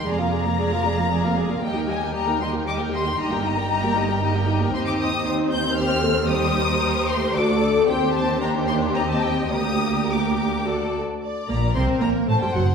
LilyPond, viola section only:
\new Staff \with { instrumentName = "Viola section" } { \time 3/4 \key ees \major \tempo 4 = 114 << { aes'16 f'16 aes'16 f'16 aes'16 f'16 aes'16 f'16 aes'16 f'16 aes'16 f'16 | g'16 ees'16 g'16 ees'16 g'16 ees'16 g'16 ees'16 g'16 ees'16 g'16 ees'16 | ees'16 g'16 ees'16 g'16 ees'16 g'16 ees'16 g'16 ees'16 g'16 ees'16 g'16 | \key bes \major ees'2 g'8 a'8 |
g'4 g'4 fis'8 a'8 | g'4 g'2 | g'2 fis'8 r8 | r8 bes8 c'8 bes8 a16 g16 fis8 | } \\ { aes16 bes16 aes16 bes16 aes16 bes16 aes16 bes16 aes16 bes16 aes16 bes16 | g16 bes16 g16 bes16 g16 bes16 g16 bes16 g16 bes16 g16 bes16 | g16 bes16 g16 bes16 g16 bes16 g16 bes16 g16 bes16 g16 bes16 | c'4 c'2 |
g4 g8 a8 a4 | c'4 d'4 c'4 | bes2 a8 r8 | r2. | } >> }